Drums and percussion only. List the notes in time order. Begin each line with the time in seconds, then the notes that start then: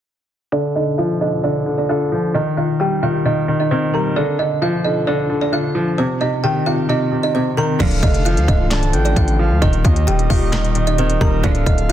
7.80 kick, closed hi-hat, crash
7.91 closed hi-hat
8.03 kick, closed hi-hat
8.14 closed hi-hat
8.26 closed hi-hat
8.37 closed hi-hat
8.48 kick, closed hi-hat
8.71 snare, clap, closed hi-hat
8.83 closed hi-hat
8.93 closed hi-hat
9.05 closed hi-hat
9.16 kick, closed hi-hat
9.28 closed hi-hat
9.62 kick, closed hi-hat
9.73 closed hi-hat
9.85 kick, closed hi-hat
9.96 closed hi-hat
10.08 closed hi-hat
10.19 closed hi-hat
10.30 kick, open hi-hat
10.53 snare, clap, closed hi-hat
10.64 closed hi-hat
10.75 closed hi-hat
10.87 closed hi-hat
10.98 closed hi-hat
11.10 closed hi-hat
11.21 kick
11.44 kick, closed hi-hat
11.55 closed hi-hat
11.66 kick, closed hi-hat
11.78 closed hi-hat